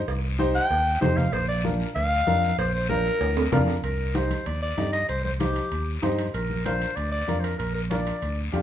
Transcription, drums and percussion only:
0.08 cowbell loud
0.08 high conga soft
0.08 long guiro medium
0.39 high conga medium
0.39 short guiro medium
0.55 short guiro medium
0.70 cowbell medium
0.70 high conga soft
0.70 long guiro medium
1.01 high conga medium
1.01 low conga medium
1.01 low timbale medium
1.01 short guiro medium
1.17 low conga medium
1.17 short guiro medium
1.33 cowbell loud
1.33 high conga soft
1.33 long guiro medium
1.65 high conga medium
1.65 short guiro medium
1.80 short guiro medium
1.96 cowbell medium
1.96 high conga soft
1.96 long guiro medium
2.27 high conga medium
2.27 short guiro medium
2.43 short guiro medium
2.58 cowbell loud
2.58 high conga soft
2.58 long guiro medium
2.89 high conga medium
2.89 short guiro medium
3.05 short guiro medium
3.21 cowbell medium
3.21 high conga soft
3.21 high timbale medium
3.21 long guiro medium
3.37 low timbale loud
3.52 high conga medium
3.52 low conga medium
3.52 low timbale medium
3.52 short guiro medium
3.67 low timbale medium
3.67 short guiro medium
3.84 high conga soft
3.84 high timbale medium
3.84 long guiro medium
4.15 high conga medium
4.15 high timbale medium
4.15 short guiro medium
4.31 high conga medium
4.31 high timbale medium
4.31 short guiro medium
4.46 high conga soft
4.46 high timbale medium
4.46 long guiro medium
4.78 high conga medium
4.78 high timbale medium
4.78 low timbale medium
4.78 short guiro medium
4.93 high timbale medium
4.93 short guiro medium
5.09 high conga soft
5.09 high timbale medium
5.09 long guiro medium
5.25 high conga medium
5.40 high conga medium
5.40 high timbale medium
5.40 short guiro medium
5.56 high timbale medium
5.56 short guiro medium
5.72 high conga soft
5.72 high timbale medium
5.72 long guiro medium
6.03 high conga medium
6.03 high timbale medium
6.03 low timbale medium
6.03 short guiro medium
6.18 high timbale medium
6.18 short guiro medium
6.34 high conga soft
6.34 high timbale medium
6.34 long guiro medium
6.50 high conga medium
6.66 high conga medium
6.66 high timbale medium
6.66 short guiro medium
6.81 high timbale medium
6.81 short guiro medium
6.97 high conga soft
6.97 high timbale medium
6.97 long guiro medium
7.28 high conga medium
7.28 high timbale medium
7.28 short guiro medium
7.44 high timbale medium
7.44 short guiro medium
7.60 high conga soft
7.60 high timbale medium
7.60 long guiro medium
7.91 high conga medium
7.91 high timbale medium
7.91 short guiro medium
8.07 high timbale medium
8.07 short guiro medium
8.22 high conga soft
8.22 high timbale medium
8.22 long guiro medium
8.53 high conga medium
8.53 high timbale medium
8.53 low timbale medium
8.53 short guiro medium

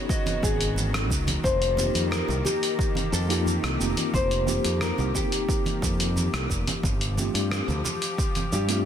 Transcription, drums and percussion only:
0.09 kick loud
0.09 shaker soft
0.26 closed hi-hat soft
0.26 high conga medium
0.26 shaker soft
0.43 kick loud
0.43 shaker medium
0.61 closed hi-hat medium
0.61 shaker soft
0.76 high conga medium
0.76 shaker soft
0.94 cross-stick medium
0.94 closed hi-hat soft
0.94 shaker soft
1.10 kick medium
1.10 shaker medium
1.27 closed hi-hat soft
1.27 high conga medium
1.27 low conga medium
1.27 shaker soft
1.44 kick loud
1.44 shaker soft
1.62 closed hi-hat soft
1.62 shaker soft
1.77 high conga medium
1.77 shaker medium
1.95 closed hi-hat medium
1.95 shaker soft
2.12 cross-stick medium
2.12 shaker soft
2.28 low conga medium
2.28 shaker soft
2.45 high conga medium
2.45 low conga medium
2.45 shaker medium
2.63 closed hi-hat medium
2.63 shaker soft
2.79 kick loud
2.79 shaker soft
2.95 closed hi-hat soft
2.95 high conga medium
2.95 shaker soft
3.14 shaker medium
3.30 closed hi-hat soft
3.30 shaker soft
3.46 high conga medium
3.46 shaker soft
3.64 cross-stick medium
3.64 closed hi-hat soft
3.64 shaker soft
3.81 shaker medium
3.97 closed hi-hat medium
3.97 high conga medium
3.97 shaker soft
4.14 kick loud
4.14 shaker soft
4.31 closed hi-hat soft
4.31 shaker soft
4.47 high conga medium
4.47 shaker medium
4.65 closed hi-hat medium
4.65 shaker soft
4.81 cross-stick medium
4.81 shaker soft
4.98 low conga medium
4.98 shaker soft
5.14 kick medium
5.14 high conga medium
5.14 low conga medium
5.14 shaker medium
5.32 closed hi-hat medium
5.32 shaker soft
5.49 kick loud
5.49 shaker soft
5.66 closed hi-hat soft
5.66 high conga medium
5.66 shaker soft
5.82 kick medium
5.82 shaker medium
6.00 closed hi-hat medium
6.00 shaker soft
6.16 high conga medium
6.16 shaker soft
6.34 cross-stick medium
6.34 closed hi-hat soft
6.34 shaker soft
6.50 kick medium
6.50 shaker medium
6.67 closed hi-hat medium
6.67 high conga medium
6.67 low conga medium
6.67 shaker soft
6.83 kick loud
6.83 shaker soft
7.01 closed hi-hat soft
7.01 shaker soft
7.17 high conga medium
7.17 shaker medium
7.35 closed hi-hat medium
7.35 shaker soft
7.51 cross-stick medium
7.51 shaker soft
7.69 low conga medium
7.69 shaker soft
7.84 high conga medium
7.84 low conga medium
7.84 shaker medium
8.02 closed hi-hat medium
8.02 shaker soft
8.18 kick loud
8.18 shaker soft
8.35 closed hi-hat soft
8.35 high conga medium
8.35 shaker soft
8.52 shaker medium
8.69 closed hi-hat medium
8.69 shaker soft

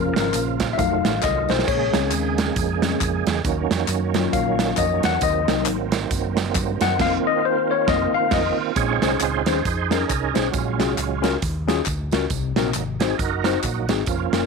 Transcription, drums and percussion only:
0.16 snare loud
0.16 closed hi-hat medium
0.16 tambourine medium
0.34 clap medium
0.34 closed hi-hat medium
0.34 tambourine loud
0.60 kick medium
0.60 snare loud
0.60 closed hi-hat medium
0.60 tambourine medium
0.79 kick loud
0.79 closed hi-hat loud
0.79 tambourine medium
1.05 snare loud
1.05 closed hi-hat medium
1.05 tambourine medium
1.22 kick medium
1.22 snare medium
1.22 clap medium
1.22 tambourine medium
1.48 snare medium
1.48 tambourine medium
1.59 snare medium
1.68 kick loud
1.68 tambourine medium
1.68 crash medium
1.94 snare loud
1.94 closed hi-hat medium
1.94 tambourine medium
2.11 clap medium
2.11 closed hi-hat medium
2.11 tambourine medium
2.38 snare loud
2.38 closed hi-hat medium
2.38 tambourine medium
2.56 kick loud
2.56 closed hi-hat loud
2.56 tambourine medium
2.82 snare loud
2.82 closed hi-hat medium
2.82 tambourine soft
3.01 kick medium
3.01 clap medium
3.01 closed hi-hat medium
3.01 tambourine medium
3.26 snare loud
3.26 closed hi-hat medium
3.26 tambourine medium
3.45 kick loud
3.45 closed hi-hat medium
3.45 tambourine medium
3.71 snare loud
3.71 closed hi-hat medium
3.71 tambourine medium
3.88 clap medium
3.88 closed hi-hat medium
3.88 tambourine medium
4.14 snare loud
4.14 closed hi-hat medium
4.14 tambourine medium
4.33 kick loud
4.33 closed hi-hat medium
4.33 tambourine medium
4.59 snare loud
4.59 closed hi-hat medium
4.59 tambourine soft
4.77 kick medium
4.77 clap medium
4.77 closed hi-hat medium
4.77 tambourine medium
5.03 snare loud
5.03 closed hi-hat medium
5.03 tambourine soft
5.21 kick loud
5.21 closed hi-hat medium
5.21 tambourine medium
5.48 snare loud
5.48 closed hi-hat medium
5.48 tambourine medium
5.66 clap loud
5.66 closed hi-hat medium
5.66 tambourine loud
5.92 snare loud
5.92 closed hi-hat medium
5.92 tambourine medium
6.11 kick loud
6.11 closed hi-hat loud
6.11 tambourine medium
6.37 snare loud
6.37 closed hi-hat medium
6.37 tambourine medium
6.55 kick loud
6.55 clap medium
6.55 closed hi-hat medium
6.55 tambourine medium
6.81 snare loud
6.81 closed hi-hat medium
6.81 tambourine medium
6.99 kick loud
6.99 snare loud
6.99 crash medium
7.88 kick loud
7.88 snare loud
8.31 kick loud
8.31 snare loud
8.31 crash medium
8.76 kick loud
8.76 closed hi-hat medium
8.76 tambourine medium
9.02 snare medium
9.02 closed hi-hat medium
9.02 tambourine medium
9.20 clap medium
9.20 closed hi-hat medium
9.20 tambourine medium
9.46 snare loud
9.46 closed hi-hat medium
9.46 tambourine medium
9.65 kick loud
9.65 closed hi-hat medium
9.65 tambourine medium
9.91 snare loud
9.91 closed hi-hat medium
9.91 tambourine medium
10.10 kick medium
10.10 clap medium
10.10 closed hi-hat medium
10.10 tambourine medium
10.35 snare loud
10.35 closed hi-hat medium
10.35 tambourine soft
10.54 kick loud
10.54 closed hi-hat medium
10.54 tambourine medium
10.80 snare medium
10.80 closed hi-hat medium
10.80 tambourine medium
10.98 clap medium
10.98 closed hi-hat medium
10.98 tambourine medium
11.24 snare medium
11.24 closed hi-hat medium
11.24 tambourine medium
11.42 kick loud
11.42 closed hi-hat loud
11.42 tambourine medium
11.69 snare loud
11.69 closed hi-hat medium
11.69 tambourine medium
11.86 kick medium
11.86 clap medium
11.86 closed hi-hat medium
11.86 tambourine medium
12.11 snare loud
12.11 closed hi-hat medium
12.11 tambourine soft
12.30 kick loud
12.30 closed hi-hat medium
12.30 tambourine medium
12.56 snare loud
12.56 closed hi-hat medium
12.56 tambourine medium
12.74 clap loud
12.74 closed hi-hat medium
12.74 tambourine medium
13.00 snare loud
13.00 closed hi-hat medium
13.00 tambourine soft
13.19 kick loud
13.19 closed hi-hat medium
13.19 tambourine medium
13.44 snare medium
13.44 closed hi-hat medium
13.44 tambourine soft
13.63 kick medium
13.63 clap medium
13.63 closed hi-hat medium
13.63 tambourine medium
13.89 snare loud
13.89 closed hi-hat medium
13.89 tambourine soft
14.07 kick loud
14.07 closed hi-hat medium
14.07 tambourine medium
14.33 snare loud
14.33 closed hi-hat medium
14.33 tambourine medium

